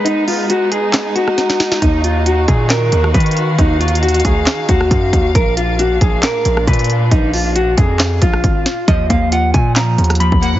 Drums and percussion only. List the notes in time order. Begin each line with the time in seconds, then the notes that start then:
0.06 closed hi-hat
0.28 open hi-hat
0.50 closed hi-hat
0.72 closed hi-hat
0.93 snare, clap, closed hi-hat
1.16 closed hi-hat
1.28 cross-stick
1.38 snare, closed hi-hat
1.50 snare
1.60 snare, closed hi-hat
1.72 snare
1.82 kick, closed hi-hat
2.04 closed hi-hat
2.26 closed hi-hat
2.48 kick, closed hi-hat
2.70 snare, clap, closed hi-hat
2.92 closed hi-hat
3.04 cross-stick
3.14 kick, closed hi-hat
3.20 closed hi-hat
3.26 closed hi-hat
3.31 closed hi-hat
3.37 closed hi-hat
3.58 kick, closed hi-hat
3.81 closed hi-hat, open hi-hat
3.88 closed hi-hat
3.95 closed hi-hat
4.03 closed hi-hat
4.08 closed hi-hat
4.14 closed hi-hat
4.20 closed hi-hat
4.25 kick, closed hi-hat
4.46 snare, clap, closed hi-hat
4.69 kick, closed hi-hat
4.81 cross-stick
4.91 kick, closed hi-hat
5.13 kick, closed hi-hat
5.35 kick, closed hi-hat
5.57 closed hi-hat
5.79 closed hi-hat
6.01 kick, closed hi-hat
6.23 snare, clap, closed hi-hat
6.45 closed hi-hat
6.57 cross-stick
6.67 kick, closed hi-hat
6.73 closed hi-hat
6.79 closed hi-hat
6.84 closed hi-hat
6.90 closed hi-hat
7.11 kick, closed hi-hat
7.33 open hi-hat
7.56 closed hi-hat
7.78 kick, closed hi-hat
7.99 snare, clap, closed hi-hat
8.22 kick, closed hi-hat
8.33 cross-stick
8.44 kick, closed hi-hat
8.66 snare, closed hi-hat
8.88 kick, closed hi-hat
9.10 kick, closed hi-hat
9.32 closed hi-hat
9.54 kick, closed hi-hat
9.76 snare, clap, closed hi-hat
9.98 closed hi-hat
10.04 closed hi-hat
10.10 cross-stick, closed hi-hat
10.15 closed hi-hat
10.20 closed hi-hat
10.32 kick
10.43 closed hi-hat